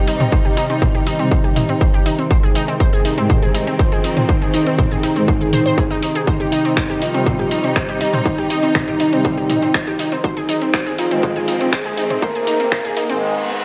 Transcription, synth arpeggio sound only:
0.07 D#4
0.20 C4
0.32 C5
0.45 G4
0.57 D#4
0.70 C4
0.82 C5
0.95 G4
1.07 D#4
1.19 C4
1.31 C5
1.44 G4
1.56 D#4
1.69 C4
1.81 C5
1.94 G4
2.06 D#4
2.19 C4
2.31 C5
2.43 G#4
2.55 D#4
2.68 C4
2.80 C5
2.93 G#4
3.05 D#4
3.18 C4
3.30 C5
3.43 G#4
3.55 D#4
3.67 C4
3.79 C5
3.92 G#4
4.04 D#4
4.17 C4
4.29 C5
4.42 G#4
4.54 D#4
4.67 C4
4.79 C5
4.91 G#4
5.03 D#4
5.16 C4
5.28 C5
5.41 G#4
5.53 C5
5.66 C5
5.78 G#4
5.91 D#4
6.03 D#4
6.15 G#4
6.27 C5
6.40 G4
6.52 D#4
6.65 C4
6.77 C5
6.90 G4
7.02 D#4
7.14 C4
7.26 C5
7.39 G4
7.51 D#4
7.64 C4
7.76 C5
7.89 G4
8.01 D#4
8.14 C4
8.26 C5
8.38 G4
8.50 D#4
8.63 C4
8.75 C5
8.88 G4
9.00 D#4
9.13 C4
9.25 C5
9.38 G4
9.50 D#4
9.62 C4
9.74 C5
9.87 G4
9.99 D#4
10.12 C4
10.24 C5
10.37 G#4
10.49 D#4
10.62 C4
10.74 C5
10.86 G#4
10.98 D#4
11.11 C4
11.23 C5
11.36 G#4
11.48 D#4
11.61 C4
11.73 C5
11.86 G#4
11.98 D#4
12.10 C4
12.22 C5
12.35 G#4
12.47 D#4
12.60 C4
12.72 C5
12.85 G#4
12.97 D#4
13.09 C4

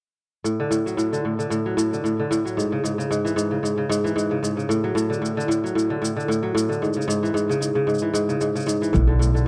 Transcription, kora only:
0.44 A2
0.60 D3
0.71 A2
0.86 F#3
0.97 A2
1.13 D3
1.25 A2
1.39 D3
1.50 A2
1.66 F#3
1.77 A2
1.93 D3
2.04 A2
2.20 D3
2.31 A2
2.45 F#3
2.57 G#2
2.72 C#3
2.84 G#2
2.98 C#3
3.11 G#2
3.25 E3
3.36 G#2
3.51 C#3
3.63 G#2
3.78 C#3
3.89 G#2
4.04 E3
4.16 G#2
4.31 C#3
4.43 G#2
4.57 C#3
4.69 A2
4.84 F#3
4.95 A2
5.10 D3
5.22 A2
5.37 D3
5.48 A2
5.64 F#3
5.75 A2
5.90 D3
6.02 A2
6.17 D3
6.28 A2
6.43 F#3
6.55 A2
6.69 D3
6.82 G#2
6.96 C#3
7.08 G#2
7.23 E3
7.34 G#2
7.49 C#3
7.61 G#2
7.75 C#3
7.87 G#2
8.02 E3
8.14 G#2
8.29 C#3
8.41 G#2
8.55 C#3
8.67 G#2
8.82 E3
8.93 A2
9.08 D3
9.19 A2
9.34 D3

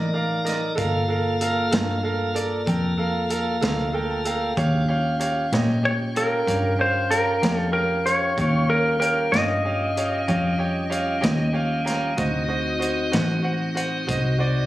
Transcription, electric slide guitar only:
5.85 C#5
6.17 A#4
6.81 C5
7.11 A#4
7.58 A4
7.73 A#4
8.06 C#5
8.70 A#4
9.00 A#4
9.32 D#5

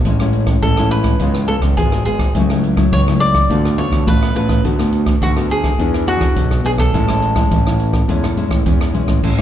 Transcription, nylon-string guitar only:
0.06 A2 G#3 C#4 E4
0.21 G#3 C#4 E4
0.64 E3
0.78 G#3 C#4 E4
1.21 C#3 G#3 B3 F4
1.49 G#3 B3 F4
1.78 G#2 G#3 B3 F4
2.06 G#3 B3 F4
2.35 C#3 F#3 A3 E4
2.50 F#3 A3 E4
2.77 F#3 A3 E4
2.93 C#3
3.08 F#3 A3 E4
3.50 D3 A3 B3 F4
3.78 A3 B3 F4
4.07 A2 A3 B3 F4
4.35 A3 B3 F4
4.64 D3 A3 B3 F#4
4.78 A3 B3 F#4
5.22 D3
5.37 A3 B3 F#4
5.79 E3 B3 D4 G#4
6.08 B3 D4 G#4
6.37 B2
6.64 B3 D4 G#4
6.93 A2 G#3 C#4 E4
7.09 G#3 C#4 E4
7.36 G#3 C#4 E4
7.52 E3
7.67 C#4 E4
8.08 A2 G#3 C#4 E4
8.37 G#3 C#4 E4
8.65 E3
8.94 G#3 C#4 E4
9.23 A2 G#3 C#4 E4
9.38 G#3 C#4 E4

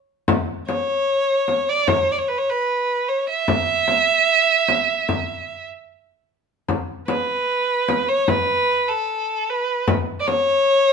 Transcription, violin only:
0.68 C#5
1.69 D5
1.88 C#5
2.12 D5
2.18 C#5
2.28 B4
2.38 C#5
2.49 B4
3.09 C#5
3.29 E5
7.07 B4
8.08 C#5
8.28 B4
8.88 A4
9.49 B4
10.20 D5
10.27 C#5

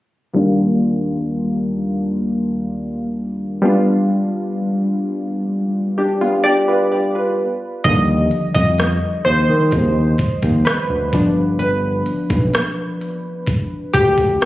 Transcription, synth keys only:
0.34 D#2 G3 A#3 D4 F4
3.62 G3 B3 D4 F4
5.98 D4 G4
6.21 B3 F4
6.44 D4 G4 D5
6.68 F4 B4
6.92 G4 D5
7.15 F4 B4
7.84 D3 F3 G3 D#5
8.54 D#5
9.25 C5
10.65 B4
11.13 F3 B3 D4
11.59 B4
13.94 G4

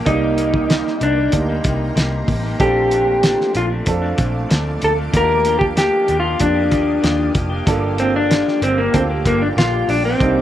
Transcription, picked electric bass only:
0.06 C2
1.01 C2
1.33 D2
1.65 C2
1.96 C2
2.28 A1
2.60 A#1
3.55 A#1
3.87 F2
4.19 A#1
4.51 D2
4.83 D2
5.14 D#2
6.09 D#2
6.40 F2
6.72 D#2
7.04 D#2
7.35 F1
7.67 G1
8.62 G1
8.94 D2
9.25 G1
9.57 A#1
9.88 A#1
10.21 C2

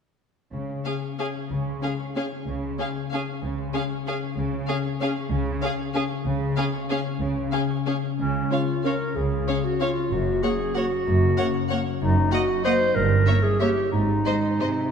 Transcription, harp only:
0.53 C#3
0.69 C#4
0.85 G#4
1.02 C#5
1.19 G#4
1.35 C#4
1.51 C#3
1.66 G#3
1.83 G#4
1.99 C#5
2.16 G#4
2.32 C#4
2.47 C#3
2.63 G#3
2.79 G#4
2.95 C#5
3.12 G#4
3.28 C#4
3.42 C#3
3.58 G#3
3.74 G#4
3.91 C#5
4.08 G#4
4.23 C#4
4.38 C#3
4.53 C#4
4.69 G#4
4.85 C#5
5.01 G#4
5.17 C#4
5.31 C#3
5.46 G#3
5.62 G#4
5.79 C#5
5.95 G#4
6.11 C#4
6.26 C#3
6.41 G#3
6.57 G#4
6.73 C#5
6.90 G#4
7.06 C#4
7.21 C#3
7.37 G#3
7.53 G#4
7.70 C#5
7.87 G#4
8.04 C#4
8.20 C#3
8.35 C#4
8.51 F4
8.68 C#5
8.85 F4
9.01 C#4
9.16 C#3
9.32 G#3
9.48 F4
9.64 C#5
9.81 F4
9.97 C#4
10.12 F#2
10.27 C#4
10.43 F#4
10.59 C#5
10.76 F#4
10.91 C#4
11.06 F#2
11.22 C#3
11.37 F#4
11.54 C#5
11.70 F#4
11.86 C#4
12.01 F#2
12.16 D#4
12.33 F#4
12.49 D#5
12.65 F#4
12.81 D#4
12.96 G2
13.11 C#4
13.27 E4
13.44 C#5
13.60 E4
13.77 C#4
13.93 G#2
14.08 C4
14.25 D#4
14.43 C5
14.60 D#4
14.76 C4

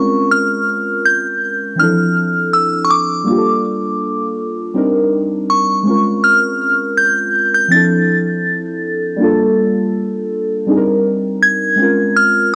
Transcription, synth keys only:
Already playing: G#3 C4 C#4 F4 A#4
1.75 E3 C4 D4
1.81 F3 E4 A4
3.24 G3 A#3 D4
3.29 F4 G4
3.38 A4
4.74 G3 C4 D4 D#4 A#4
5.83 G#3 C4 C#4
5.89 F4 A#4
7.68 F3 C4 D4
7.74 E4 A4
9.16 G3 A#3 D4
9.22 F4 A4
10.66 G3 C4 D4 D#4 G#4
10.77 A#4
11.76 G#3 C4 C#4
11.81 F4 A#4

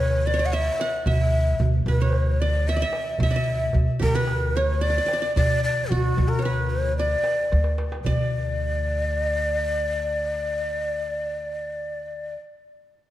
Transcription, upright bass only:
Already playing: D2
1.06 D2
1.60 D2
1.86 D2
3.20 D2
3.74 D2
4.02 D2
5.36 D2
5.91 D2
6.18 D2
7.52 D2
8.06 D2

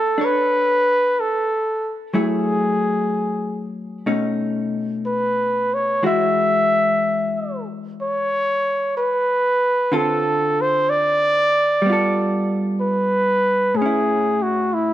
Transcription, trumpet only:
Already playing: A4
0.25 B4
1.20 A4
2.15 G#4
5.06 B4
5.74 C#5
6.06 E5
8.02 C#5
8.97 B4
9.95 A4
10.61 C5
10.89 D5
12.81 B4
13.76 G#4
14.42 F#4
14.74 E4

